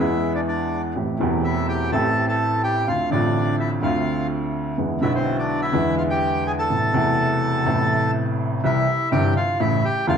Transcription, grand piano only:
0.00 E2 E3 G#3 B3 G#4
0.96 A1 A2 E3 A3 C4 G4
1.19 E1 E2 E3 A3 C4
1.23 G4
1.91 A1 A2 E3 A3 C4
1.95 G4
2.88 D2 D3 A3 C4 F4
3.10 A1 A2 D3 A3 C4
3.14 F4
3.81 D2 D3 A3 C4
3.85 F4
4.78 E2 D3 E3 G#3 B3 E4
5.01 B1 B2 D3 G#3 B3
5.05 E4
5.72 E2 D3 E3 G#3 B3 E4
6.70 A1 A2 C3 A3 B3 E4
6.92 E1 E2 C3 A3 B3
6.96 E4
7.64 A1 A2 C3 A3 B3
7.68 E4
8.63 C2 C3 E3 G3 E4
9.12 G1 G2 C3 E3 G3 E4
9.59 A1 A2 C#3 E3 A3 E4
10.07 E1 E2 C#3 E3 A3 E4

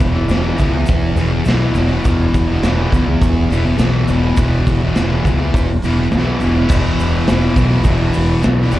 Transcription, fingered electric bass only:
0.00 E1
0.27 E1
0.60 C#2
0.89 E1
1.15 E1
1.44 B1
1.74 E1
2.06 E1
2.34 E1
2.62 E1
2.92 C#2
3.21 E1
3.51 E1
3.79 B1
4.08 E1
4.37 E1
4.66 E1
4.97 E1
5.25 C#2
5.53 E1
5.84 E1
6.14 B1
6.42 E1
6.69 E1
7.00 E1
7.29 E1
7.56 B1
7.84 E1
8.16 E1
8.44 B1
8.72 F1

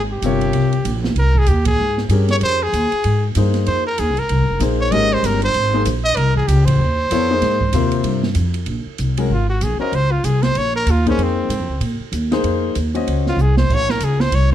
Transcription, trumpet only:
0.12 G4
1.19 A#4
1.38 G#4
1.48 G4
1.67 G#4
2.31 C#5
2.43 C5
2.63 G#4
3.67 C5
3.87 A#4
4.00 G#4
4.19 A#4
4.81 C#5
4.92 D#5
5.13 C5
5.26 A#4
5.44 C5
6.04 D#5
6.17 A#4
6.37 G#4
6.48 G4
6.65 C5
9.33 F4
9.50 F#4
9.63 G#4
9.81 A#4
9.95 C5
10.12 F4
10.25 G#4
10.43 C5
10.58 C#5
10.76 A#4
10.91 F4
11.10 C#4
11.23 C4
13.28 F4
13.42 G#4
13.58 C5
13.75 C#5
13.91 A#4
14.04 G#4
14.21 C5
14.35 C#5

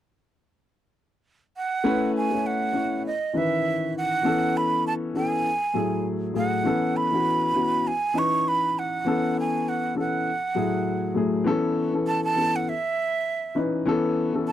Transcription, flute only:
1.57 F#5
2.17 G#5
2.46 F#5
3.06 D#5
3.38 E5
3.98 F#5
4.57 B5
4.87 A5
5.17 G#5
6.37 F#5
6.97 B5
7.87 G#5
8.18 C#6
8.48 B5
8.79 F#5
9.40 G#5
9.69 F#5
9.99 F#5
12.07 A5
12.24 A5
12.56 F#5
12.69 E5
14.48 A5

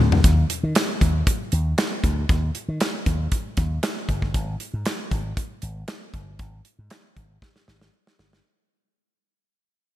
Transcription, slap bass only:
0.00 D2
0.24 D#2
0.63 D#3
1.01 D#2
1.53 D#2
2.04 D2
2.29 D#2
2.68 D#3
3.06 D#2
3.58 D#2
4.09 G1
4.35 G#1
4.74 G#2
5.11 G#1
5.63 G#1
6.14 G1
6.39 G#1
6.79 G#2
7.17 G#1
7.68 G#1
8.19 G1

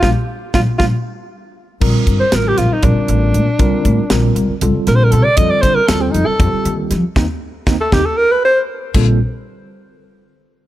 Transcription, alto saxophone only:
0.04 F4
0.55 F4
0.78 F4
2.20 C5
2.35 A#4
2.48 G4
2.58 F4
2.73 D#4
2.84 D4
4.88 A#4
4.95 C5
5.04 A#4
5.12 A4
5.24 D5
5.37 D#5
5.50 D5
5.61 C5
5.75 A#4
5.88 A4
6.01 C4
6.11 D#4
6.26 A4
7.81 A4
7.93 G4
8.05 A4
8.17 A#4
8.32 B4
8.45 C5

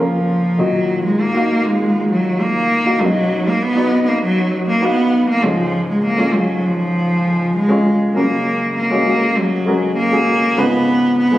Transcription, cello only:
0.00 F3
0.60 F#3
1.05 G#3
1.21 A#3
1.66 G#3
2.12 F#3
2.41 A#3
3.02 F#3
3.48 A#3
3.63 B3
4.04 B3
4.08 A#3
4.23 F#3
4.69 A#3
4.84 B3
5.30 A#3
5.45 F3
5.90 G#3
6.05 A#3
6.35 F#3
6.66 F3
7.56 G#3
8.17 A#3
8.78 A#3
9.38 F#3
9.98 A#3
10.58 B3
11.18 B3

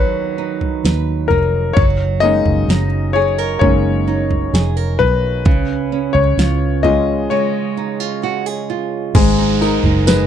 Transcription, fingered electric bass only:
Already playing: D#2
0.85 D#2
1.30 F1
1.76 F#1
2.46 F#1
2.68 F#1
3.61 F#1
4.53 F1
5.00 B1
5.46 C#2
6.15 C#2
6.37 C#2
9.15 G#1
9.83 F#1

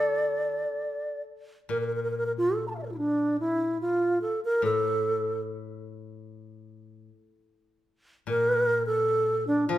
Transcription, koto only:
Already playing: D3 A3 D4 E4 A4
1.69 A#2
4.62 A2
8.27 A#2
9.69 F3

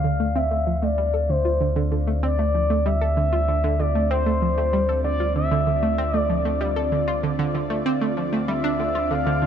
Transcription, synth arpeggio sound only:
0.04 D3
0.20 A3
0.36 C4
0.51 A3
0.67 F3
0.82 A3
0.98 G3
1.14 A4
1.29 D3
1.45 F4
1.61 D3
1.76 D3
1.92 D3
2.07 A3
2.23 C4
2.39 A3
2.55 F3
2.70 A3
2.86 G3
3.01 A4
3.17 D3
3.33 F4
3.48 D3
3.64 D3
3.80 D3
3.95 A3
4.11 C4
4.26 A3
4.42 F3
4.58 A3
4.73 G3
4.89 A4
5.04 D3
5.20 F4
5.36 D3
5.51 D3
5.67 D3
5.83 A3
5.98 C4
6.14 A3
6.30 F3
6.45 A3
6.61 G3
6.76 A4
6.92 D3
7.08 F4
7.23 D3
7.39 D3
7.55 D3
7.70 A3
7.86 C4
8.01 A3
8.17 F3
8.33 A3
8.48 G3
8.64 D4
8.79 D3
8.95 F4
9.11 D3
9.26 D3
9.42 D3

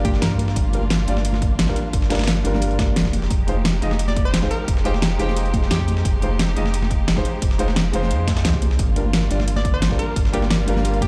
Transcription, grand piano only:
Already playing: G3 D4 F4 A#4
0.73 G3 D4 F4 A#4
1.07 G3 D4 F4 D5
1.67 G3 D4 F4 A#4
2.10 G3 D4 F4 A#4
2.43 G3 D4 F4 A#4
3.47 G#3 D#4 F4 C5
3.81 G#3 D#4 F4 D#5
4.41 G#3 D#4 F4 C5
4.84 G#3 D#4 F4 C5
5.18 G#3 D#4 F4 C5
6.21 G#3 D#4 F4 C5
6.56 G#3 D#4 F4 D#5
7.16 G#3 D#4 F4 C5
7.58 G#3 D#4 F4 C5
7.92 G#3 D#4 F4 C5
8.96 G3 D4 F4 A#4
9.30 G3 D4 F4 D5
9.90 G3 D4 F4 A#4
10.32 G3 D4 F4 A#4
10.66 G3 D4 F4 A#4

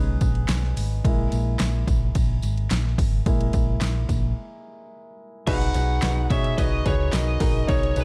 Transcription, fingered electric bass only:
Already playing: B1
0.21 A#1
0.49 B1
0.77 G#1
1.05 A#1
1.33 A#1
1.61 A#1
1.87 A#1
2.15 A#1
2.43 G#1
2.71 A#1
2.98 G#1
3.26 A#1
3.54 A#1
3.81 A#1
4.09 A#1
5.47 B1
5.75 B1
6.03 B1
6.31 B2
6.58 B1
6.86 C#2
7.13 B1
7.41 A#1
7.69 B1
7.96 B1

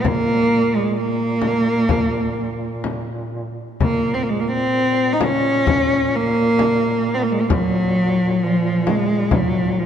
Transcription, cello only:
0.01 C4
0.07 A#3
0.75 G#3
0.97 A#3
3.82 A#3
4.14 C4
4.23 A#3
4.29 G#3
4.40 A#3
4.52 C4
5.13 D#4
5.23 C#4
6.15 A#3
7.14 C4
7.23 A#3
7.32 G#3
7.41 A#3
7.52 F#3
8.43 F3
8.88 G#3
9.34 F#3
9.79 F3

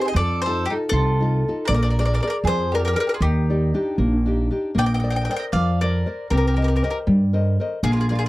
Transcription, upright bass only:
0.15 F2
0.92 C2
1.69 A#1
2.44 F2
3.21 D#2
3.98 A#1
4.75 A#1
5.53 F2
6.31 C2
7.07 G2
7.83 A#1

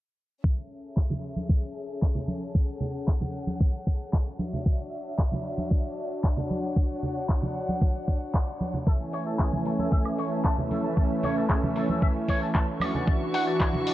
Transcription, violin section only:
0.44 C#4 G#4 A4 E5
2.55 F#5
4.39 D4 F#4 C#5 E5
6.50 F#5
8.87 A3 C#5 E5
12.81 F#4 E5 C#6

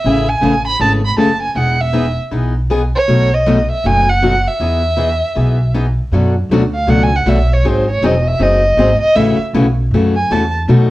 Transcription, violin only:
Already playing: E5
0.28 G#5
0.67 B5
0.81 A5
1.05 B5
1.19 A5
1.42 G#5
1.58 F#5
1.81 E5
2.96 C#5
3.34 D#5
3.72 E5
3.86 G#5
4.09 F#5
4.48 E5
6.75 F5
6.90 F#5
7.03 G#5
7.16 F#5
7.29 E5
7.53 C#5
7.68 C5
7.91 C#5
8.06 D#5
8.28 E5
8.43 D#5
9.02 D#5
9.16 E5
10.16 G#5
10.32 A5

